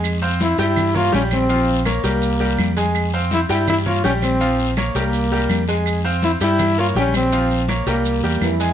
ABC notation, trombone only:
X:1
M:4/4
L:1/8
Q:1/4=165
K:Fm
V:1 name="Trombone"
z2 =E E2 F D C- | C2 z B,4 z | z2 =E E E F D C- | C2 z B,4 z |
z2 =E E2 F D C- | C2 z B,4 z |]